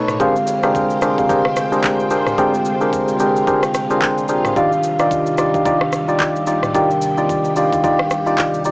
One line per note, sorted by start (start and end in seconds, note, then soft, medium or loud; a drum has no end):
0.00 0.11 B2 medium
0.00 0.20 B2 medium
0.00 0.11 A3 medium
0.00 0.20 A3 medium
0.00 0.11 D#4 medium
0.00 0.16 D#4 medium
0.00 0.18 D#4 medium
0.00 0.18 A4 medium
0.00 0.18 B4 medium
0.00 0.11 C#5 loud
0.00 0.18 C#5 medium
0.00 0.20 C#5 medium
0.08 cross-stick loud
0.08 mid tom medium
0.08 shaker medium
0.20 4.52 D2 medium
0.20 8.71 C3 medium
0.20 0.54 D3 loud
0.20 4.52 G#3 medium
0.20 0.54 G#3 loud
0.20 0.54 C4 loud
0.20 0.35 D4 medium
0.20 6.71 F4 medium
0.20 0.35 G4 medium
0.20 0.54 G4 loud
0.20 0.35 G#4 medium
0.20 0.36 A#4 medium
0.20 4.52 C5 medium
0.20 0.36 C5 loud
0.20 0.54 F5 loud
0.20 4.52 G5 medium
0.20 kick loud
0.20 shaker medium
0.36 shaker medium
0.47 shaker loud
0.63 1.05 D3 medium
0.63 1.05 G#3 medium
0.63 1.05 C4 medium
0.63 0.99 D4 medium
0.63 0.99 G4 medium
0.63 1.05 G4 medium
0.63 0.99 G#4 medium
0.63 0.99 A#4 medium
0.63 0.99 C5 medium
0.63 1.06 F5 medium
0.63 cross-stick medium
0.63 shaker soft
0.75 kick medium
0.75 shaker medium
0.90 shaker medium
1.01 1.27 D4 medium
1.01 1.27 G4 medium
1.01 1.27 G#4 medium
1.01 1.27 A#4 medium
1.01 1.27 C5 medium
1.01 cross-stick medium
1.01 shaker loud
1.18 2.04 D3 medium
1.18 2.04 G#3 medium
1.18 2.04 C4 medium
1.18 2.05 G4 medium
1.18 2.05 F5 medium
1.18 kick medium
1.18 shaker medium
1.29 1.44 D4 medium
1.29 1.44 G4 medium
1.29 1.45 G#4 medium
1.29 1.45 A#4 medium
1.29 1.45 C5 loud
1.29 kick loud
1.29 shaker medium
1.45 cross-stick loud
1.56 cross-stick loud
1.56 shaker loud
1.72 2.08 D4 medium
1.72 2.08 G4 medium
1.72 2.08 G#4 medium
1.72 2.08 A#4 medium
1.72 2.08 C5 medium
1.72 shaker soft
1.83 kick loud
1.83 clap medium
1.83 shaker medium
2.00 shaker medium
2.10 2.36 D4 medium
2.10 2.36 G4 medium
2.10 2.36 G#4 medium
2.10 2.36 A#4 medium
2.10 2.37 C5 medium
2.10 shaker loud
2.27 cross-stick medium
2.27 mid tom medium
2.27 shaker medium
2.38 3.05 D3 loud
2.38 3.06 G#3 loud
2.38 3.06 C4 loud
2.38 2.54 D4 medium
2.38 2.54 G4 medium
2.38 3.06 G4 loud
2.38 2.54 G#4 medium
2.38 2.54 A#4 medium
2.38 2.54 C5 loud
2.38 3.06 G5 loud
2.38 kick loud
2.38 shaker medium
2.54 shaker medium
2.65 shaker loud
2.81 3.17 D4 medium
2.81 3.17 G4 medium
2.81 3.17 G#4 medium
2.81 3.17 A#4 medium
2.81 3.17 C5 medium
2.81 shaker medium
2.93 kick loud
2.93 shaker medium
3.08 shaker medium
3.20 4.08 D3 medium
3.20 4.08 G#3 medium
3.20 4.08 C4 medium
3.20 3.45 D4 medium
3.20 3.45 G4 medium
3.20 4.09 G4 medium
3.20 3.45 G#4 medium
3.20 3.46 A#4 medium
3.20 3.46 C5 medium
3.20 4.09 G5 loud
3.20 shaker loud
3.36 shaker medium
3.47 3.63 D4 medium
3.47 3.63 G4 medium
3.47 3.63 G#4 medium
3.47 3.63 A#4 medium
3.47 3.63 C5 loud
3.47 kick loud
3.47 shaker medium
3.63 cross-stick loud
3.63 shaker medium
3.74 cross-stick loud
3.74 shaker loud
3.90 4.26 D4 medium
3.90 4.26 G4 medium
3.90 4.26 G#4 medium
3.90 4.26 A#4 medium
3.90 4.27 C5 medium
3.90 shaker soft
4.02 kick medium
4.02 clap loud
4.02 shaker medium
4.18 shaker medium
4.28 4.54 D4 medium
4.28 4.54 G4 medium
4.28 4.55 G#4 medium
4.28 4.55 A#4 medium
4.28 4.55 C5 medium
4.28 shaker medium
4.45 cross-stick loud
4.45 mid tom medium
4.45 shaker medium
4.56 8.71 D#2 medium
4.56 4.90 D#3 loud
4.56 8.71 G3 medium
4.56 4.90 D4 medium
4.56 4.72 D#4 medium
4.56 4.72 F4 medium
4.56 4.72 G4 medium
4.56 4.90 G4 loud
4.56 4.72 D5 loud
4.56 4.91 F5 loud
4.56 kick loud
4.56 shaker medium
4.72 shaker medium
4.83 shaker loud
4.99 5.41 D#3 medium
4.99 5.42 D4 medium
4.99 5.35 D#4 medium
4.99 5.35 F4 medium
4.99 5.36 G4 medium
4.99 5.42 G4 medium
4.99 5.36 D5 medium
4.99 5.42 F5 medium
4.99 cross-stick medium
4.99 shaker medium
5.11 kick medium
5.11 shaker medium
5.26 shaker medium
5.38 5.64 D#4 medium
5.38 5.64 F4 medium
5.38 5.64 G4 medium
5.38 5.64 D5 medium
5.38 cross-stick medium
5.38 shaker loud
5.54 6.40 D#3 medium
5.54 6.41 D4 medium
5.54 6.41 G4 medium
5.54 6.41 F5 medium
5.54 kick medium
5.54 shaker medium
5.65 5.81 D#4 medium
5.65 5.81 F4 medium
5.65 5.81 G4 medium
5.65 5.81 D5 loud
5.65 kick loud
5.65 shaker medium
5.81 cross-stick loud
5.92 cross-stick medium
5.92 shaker loud
6.08 6.44 D#4 medium
6.08 6.44 F4 medium
6.08 6.45 G4 medium
6.08 6.45 D5 medium
6.08 shaker soft
6.20 kick medium
6.20 clap loud
6.20 shaker medium
6.36 shaker medium
6.47 6.73 D#4 medium
6.47 6.73 F4 medium
6.47 6.73 G4 medium
6.47 6.73 D5 medium
6.47 shaker loud
6.63 cross-stick medium
6.63 mid tom medium
6.63 shaker medium
6.74 7.42 D#3 loud
6.74 7.42 D4 loud
6.74 6.90 D#4 medium
6.74 6.90 F4 medium
6.74 8.71 G4 medium
6.74 6.90 G4 medium
6.74 7.42 G4 loud
6.74 6.90 D5 loud
6.74 7.42 G5 loud
6.74 kick loud
6.74 shaker medium
6.90 shaker medium
7.02 shaker loud
7.17 7.53 D#4 medium
7.17 7.54 F4 medium
7.17 7.54 G4 medium
7.17 7.54 D5 medium
7.17 shaker medium
7.29 kick medium
7.29 shaker medium
7.44 shaker medium
7.56 8.45 D#3 medium
7.56 8.45 D4 medium
7.56 7.82 D#4 medium
7.56 7.82 F4 medium
7.56 7.82 G4 medium
7.56 8.45 G4 medium
7.56 7.82 D5 medium
7.56 8.45 F5 loud
7.56 shaker loud
7.72 kick loud
7.72 shaker medium
7.83 7.99 D#4 loud
7.83 7.99 F4 medium
7.83 7.99 G4 medium
7.83 7.99 D5 loud
7.83 kick loud
7.83 shaker medium
7.99 cross-stick loud
8.11 cross-stick loud
8.11 shaker loud
8.26 8.63 D#4 medium
8.26 8.63 F4 medium
8.26 8.63 G4 medium
8.26 8.63 D5 medium
8.26 shaker soft
8.38 kick loud
8.38 clap loud
8.38 shaker medium
8.54 shaker medium
8.65 8.71 D#4 medium
8.65 8.71 F4 medium
8.65 8.71 G4 medium
8.65 8.71 D5 medium
8.65 shaker loud